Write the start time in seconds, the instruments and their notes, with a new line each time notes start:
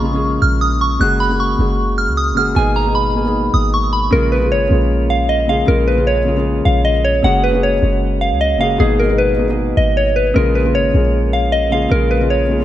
Already playing: 808-style bass A#1, grand piano C#3 G#3 A#3 F4 G#4, synth bell C#6
0.02 grand piano C#3 G#3 A#3 F4 G#4
0.12 grand piano C#3 G#3 A#3 F4 G#4
0.42 808-style bass A#1, synth bell F6
0.61 synth bell D#6
0.81 synth bell C#6
0.99 808-style bass F#1, grand piano C#3 G#3 A#3 F#4 G#4, synth bell F#6
1.20 synth bell B5
1.29 grand piano C#3 G#3 A#3 F#4 G#4
1.40 synth bell C#6
1.58 808-style bass F#1, grand piano C#3 G#3 A#3 F#4 G#4
1.98 synth bell F6
2.08 808-style bass C#2
2.17 synth bell D#6
2.32 808-style bass F#1, grand piano C#3 G#3
2.37 grand piano A#3 F#4 G#4, synth bell F6
2.55 808-style bass G#1, grand piano B2 G#3 A#3 D#4 G#4, synth bell G#5
2.76 synth bell A#5
2.85 grand piano B2 G#3 A#3 D#4 G#4
2.95 synth bell B5
3.13 grand piano B2 G#3 A#3 D#4 G#4
3.23 grand piano B2 G#3 A#3 D#4 G#4
3.54 808-style bass G#1, synth bell D#6
3.74 synth bell C#6
3.93 synth bell B5
4.11 808-style bass A#1, grand piano C#3 G#3 A#3 F4 G#4, synth bell A#4
4.32 synth bell B4
4.40 grand piano C#3 G#3 A#3 F4 G#4
4.51 808-style bass G#1, synth bell C#5
4.69 808-style bass A#1, grand piano C#3 G#3 A#3 F4 G#4
5.10 synth bell F5
5.29 synth bell D#5
5.47 grand piano C#3 G#3 A#3 F4 G#4, synth bell F5
5.66 808-style bass A#1, grand piano C#3 G#3 A#3 F4 G#4, synth bell A#4
5.88 synth bell B4
5.96 grand piano C#3 G#3 A#3 F4 G#4
6.07 synth bell C#5
6.25 grand piano C#3 G#3 A#3 F4 G#4
6.35 grand piano C#3 G#3 A#3 F4 G#4
6.65 808-style bass A#1, synth bell F5
6.85 synth bell D#5
7.05 synth bell C#5
7.23 808-style bass F#1, grand piano C#3 G#3 A#3 F#4 G#4, synth bell F#5
7.44 synth bell B4
7.52 grand piano C#3 G#3 A#3 F#4 G#4
7.63 synth bell C#5
7.81 808-style bass F#1, grand piano C#3 G#3 A#3 F#4 G#4
8.21 synth bell F5
8.32 808-style bass C#2
8.41 synth bell D#5
8.56 808-style bass F#1, grand piano C#3 G#3
8.60 grand piano A#3 F#4 G#4, synth bell F5
8.78 808-style bass G#1, grand piano B2 G#3 A#3 D#4 G#4, synth bell G#4
8.99 synth bell A#4
9.08 grand piano B2 G#3 A#3 D#4 G#4
9.18 synth bell B4
9.37 grand piano B2 G#3 A#3 D#4 G#4
9.47 grand piano B2 G#3 A#3 D#4 G#4
9.77 808-style bass G#1, synth bell D#5
9.97 synth bell C#5
10.16 synth bell B4
10.34 808-style bass A#1, grand piano C#3 G#3 A#3 F4 G#4, synth bell A#4
10.55 synth bell B4
10.64 grand piano C#3 G#3 A#3 F4 G#4
10.75 808-style bass G#1, synth bell C#5
10.92 808-style bass A#1, grand piano C#3 G#3 A#3 F4 G#4
11.33 synth bell F5
11.52 synth bell D#5
11.70 grand piano C#3 G#3 A#3 F4 G#4, synth bell F5
11.89 808-style bass A#1, grand piano C#3 G#3 A#3 F4 G#4, synth bell A#4
12.11 synth bell B4
12.20 grand piano C#3 G#3 A#3 F4 G#4
12.30 synth bell C#5
12.48 grand piano C#3 G#3 A#3 F4 G#4
12.58 grand piano C#3 G#3 A#3 F4